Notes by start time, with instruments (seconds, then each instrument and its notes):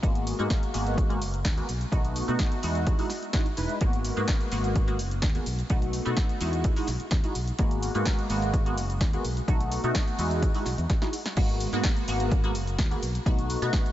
0.02 fingered electric bass G#1, analog polysynth G#3 A#3 B3 F#4, kick, closed hi-hat, shaker
0.15 closed hi-hat, shaker
0.27 open hi-hat, shaker
0.39 fingered electric bass G#2, analog polysynth G#3 A#3 B3 F#4, closed hi-hat, shaker
0.50 kick, snare, closed hi-hat, shaker
0.63 closed hi-hat, shaker
0.74 fingered electric bass G#1, analog polysynth G#3 A#3 B3 F#4, open hi-hat, shaker
0.86 closed hi-hat, shaker
0.98 kick, closed hi-hat, shaker
1.09 analog polysynth G#3 A#3 B3 F#4, closed hi-hat, shaker
1.22 fingered electric bass F#1, open hi-hat, shaker
1.34 closed hi-hat, shaker
1.45 fingered electric bass D#2, kick, snare, closed hi-hat, shaker
1.57 analog polysynth G#3 A#3 B3 F#4, closed hi-hat, shaker
1.69 fingered electric bass B1, open hi-hat, shaker
1.81 closed hi-hat, shaker
1.92 fingered electric bass B1, analog polysynth A3 B3 D#4 F#4, kick, closed hi-hat, shaker
2.05 closed hi-hat, shaker
2.16 open hi-hat, shaker
2.28 fingered electric bass B2, analog polysynth A3 B3 D#4 F#4, closed hi-hat, shaker
2.39 kick, snare, closed hi-hat, shaker
2.52 closed hi-hat, shaker
2.63 fingered electric bass E2, analog polysynth G#3 D#4 E4 F#4, open hi-hat, shaker
2.75 closed hi-hat, shaker
2.87 kick, closed hi-hat, shaker
2.99 analog polysynth G#3 D#4 E4 F#4, open hi-hat, shaker
3.10 snare, open hi-hat, shaker
3.23 closed hi-hat, shaker
3.33 analog polysynth G#3 D#4 E4 F#4, kick, snare, closed hi-hat, shaker
3.46 closed hi-hat, shaker
3.57 fingered electric bass E1, analog polysynth G#3 D#4 E4 B4, open hi-hat, shaker
3.69 closed hi-hat, shaker
3.81 fingered electric bass G#1, analog polysynth G#3 A#3 B3 F#4, kick, closed hi-hat, shaker
3.93 closed hi-hat, shaker
4.05 open hi-hat, shaker
4.17 fingered electric bass G#2, analog polysynth G#3 A#3 B3 F#4, closed hi-hat, shaker
4.28 kick, snare, closed hi-hat, shaker
4.41 closed hi-hat, shaker
4.52 fingered electric bass G#1, analog polysynth G#3 A#3 B3 F#4, open hi-hat, shaker
4.64 closed hi-hat, shaker
4.76 kick, closed hi-hat, shaker
4.87 analog polysynth G#3 A#3 B3 F#4, closed hi-hat, shaker
4.99 fingered electric bass F#1, open hi-hat, shaker
5.11 closed hi-hat, shaker
5.22 fingered electric bass D#2, kick, snare, closed hi-hat, shaker
5.35 analog polysynth G#3 A#3 B3 F#4, closed hi-hat, shaker
5.46 fingered electric bass B1, open hi-hat, shaker
5.59 closed hi-hat, shaker
5.70 fingered electric bass B1, analog polysynth A3 B3 D#4 F#4, kick, closed hi-hat, shaker
5.82 closed hi-hat, shaker
5.93 open hi-hat, shaker
6.05 fingered electric bass B2, analog polysynth A3 B3 D#4 F#4, closed hi-hat, shaker
6.17 kick, snare, closed hi-hat, shaker
6.29 closed hi-hat, shaker
6.41 fingered electric bass E2, analog polysynth G#3 D#4 E4 F#4, open hi-hat, shaker
6.53 closed hi-hat, shaker
6.64 kick, closed hi-hat, shaker
6.76 analog polysynth G#3 D#4 E4 F#4, open hi-hat, shaker
6.87 fingered electric bass B1, snare, open hi-hat, shaker
7.00 closed hi-hat, shaker
7.11 fingered electric bass E2, kick, snare, closed hi-hat, shaker
7.23 analog polysynth G#3 D#4 E4 F#4, closed hi-hat, shaker
7.35 fingered electric bass B1, open hi-hat, shaker
7.48 closed hi-hat, shaker
7.58 fingered electric bass G#1, analog polysynth G#3 A#3 B3 F#4, kick, closed hi-hat, shaker
7.71 closed hi-hat, shaker
7.83 open hi-hat, shaker
7.95 fingered electric bass G#2, analog polysynth G#3 A#3 B3 F#4, closed hi-hat, shaker
8.05 kick, snare, closed hi-hat, shaker
8.19 closed hi-hat, shaker
8.30 fingered electric bass G#1, analog polysynth G#3 A#3 B3 F#4, open hi-hat, shaker
8.42 closed hi-hat, shaker
8.54 kick, closed hi-hat, shaker
8.66 analog polysynth G#3 A#3 B3 F#4, closed hi-hat, shaker
8.77 fingered electric bass F#1, open hi-hat, shaker
8.90 closed hi-hat, shaker
9.01 fingered electric bass D#2, kick, snare, closed hi-hat, shaker
9.13 analog polysynth G#3 A#3 B3 F#4, closed hi-hat, shaker
9.24 fingered electric bass B1, open hi-hat, shaker
9.37 closed hi-hat, shaker
9.48 fingered electric bass B1, analog polysynth A3 B3 D#4 F#4, kick, closed hi-hat, shaker
9.60 closed hi-hat, shaker
9.72 open hi-hat, shaker
9.84 fingered electric bass B2, analog polysynth A3 B3 D#4 F#4, closed hi-hat, shaker
9.95 kick, snare, closed hi-hat, shaker
10.08 closed hi-hat, shaker
10.19 fingered electric bass E2, analog polysynth G#3 D#4 E4 F#4, open hi-hat, shaker
10.31 closed hi-hat, shaker
10.42 kick, closed hi-hat, shaker
10.54 analog polysynth G#3 D#4 E4 F#4, open hi-hat, shaker
10.66 fingered electric bass B1, snare, open hi-hat, shaker
10.78 fingered electric bass E2, closed hi-hat, shaker
10.90 kick, snare, closed hi-hat, shaker
11.02 analog polysynth G#3 D#4 E4 F#4, snare, closed hi-hat, shaker
11.13 open hi-hat, shaker
11.26 snare, closed hi-hat, shaker
11.37 fingered electric bass G#1, analog polysynth G#3 A#3 B3 F#4, kick, closed hi-hat, crash, shaker
11.49 closed hi-hat, shaker
11.60 open hi-hat, shaker
11.73 fingered electric bass G#2, analog polysynth G#3 A#3 B3 F#4, closed hi-hat, shaker
11.84 kick, snare, closed hi-hat, shaker
11.96 closed hi-hat, shaker
12.08 fingered electric bass G#1, analog polysynth G#3 A#3 B3 F#4, open hi-hat, shaker
12.20 closed hi-hat, shaker
12.31 kick, closed hi-hat, shaker
12.44 analog polysynth G#3 A#3 B3 F#4, closed hi-hat, shaker
12.55 fingered electric bass F#1, open hi-hat, shaker
12.67 closed hi-hat, shaker
12.79 fingered electric bass D#2, kick, snare, closed hi-hat, shaker
12.91 analog polysynth G#3 A#3 B3 F#4, closed hi-hat, shaker
13.02 fingered electric bass B1, open hi-hat, shaker
13.15 closed hi-hat, shaker
13.26 fingered electric bass B1, analog polysynth A3 B3 D#4 F#4, kick, closed hi-hat, shaker
13.39 closed hi-hat, shaker
13.50 open hi-hat, shaker
13.62 fingered electric bass B2, analog polysynth A3 B3 D#4 F#4, closed hi-hat, shaker
13.73 kick, snare, closed hi-hat, shaker
13.86 closed hi-hat, shaker